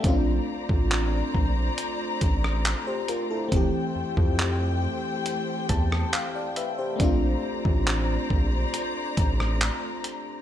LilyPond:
<<
  \new Staff \with { instrumentName = "String section" } { \time 4/4 \key bes \lydian \tempo 4 = 69 <a c'' d'' bes''>1 | <g' c'' g''>1 | <c'' d'' bes''>1 | }
  \new Staff \with { instrumentName = "FM electric piano" } { \time 4/4 \key bes \lydian << { r2. r16 <g' c''>16 <f' bes'>16 <e' a'>16~ | <e' a'>16 r2 r16 a''8 f''16 <d'' g''>16 <ces'' e''>16 <g' c''>16~ | <g' c''>16 r2. r8. | } \\ { <a c' des' d' f'>1 | <e a c' g'>2.~ <e a c' g'>8 r8 | <a c' d' f'>1 | } >> }
  \new Staff \with { instrumentName = "Analog synth bass" } { \clef bass \time 4/4 \key bes \lydian bes,,8 r16 a,,8. bes,,8 r8 a,,8. r8. | f,,16 r16 f,16 f,4 r8. e,8 r4 | bes,,8 r16 a,,8. bes,,8 r8 a,,8. r8. | }
  \new DrumStaff \with { instrumentName = "Drums" } \drummode { \time 4/4 <hh bd>8. bd16 <hc hh>8 bd8 hh8 <hh bd>16 ss16 <hc hh>8 hh8 | <hh bd>8. bd16 <hc hh>4 hh8 <hh bd>16 ss16 <hc hh>8 hh8 | <hh bd>8. bd16 <hc hh>8 bd8 hh8 <hh bd>16 ss16 <hc hh>8 hh8 | }
>>